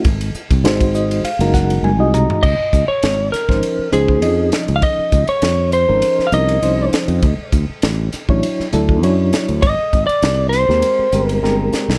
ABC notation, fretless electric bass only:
X:1
M:4/4
L:1/16
Q:"Swing 16ths" 1/4=100
K:Abmix
V:1 name="Fretless electric bass" clef=bass
A,,,2 z C,, A,,,4 z G,,,3 G,,, C,,2 z | [K:Db] D,, z D,, z A,,,2 z A,,, z2 D,,2 F,,2 z D,, | z2 D,, z F,,3 A,,, z2 C,,2 C,,2 z F,, | =D,, z D,, z =A,,,2 z A,,, z2 D,,2 ^F,,2 z D,, |
A,,, z A,,, z C,,3 E,, z2 =G,,,2 G,,,2 z C,, |]